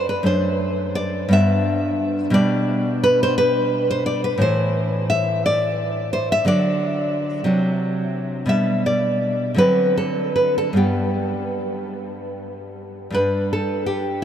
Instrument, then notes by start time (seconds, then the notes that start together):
nylon-string guitar
Already playing: F#2 A3 D4
0.09 B4
0.23 F#2 A3 D4 C5
0.95 D5
1.29 G2 B3 D4
1.33 E5
2.30 B2 G3 D4 D5
3.04 B4
3.23 C5
3.38 B4
3.90 C5
4.06 D5
4.24 B4
4.38 A2 E3 E4
4.42 C5
5.10 E5
5.46 D5
6.13 C5
6.32 E5
6.45 D3 F#3 D4 D5
7.44 C3 F#3 D4
8.46 B2 G3 D4 E5
8.86 D5
9.54 D3 F#3 C4 B4
9.97 A4
10.36 B4
10.58 A4
10.73 G2 G3 B3
10.77 G4
13.10 G2 G3 D4
13.14 B4
13.53 A4
13.86 G4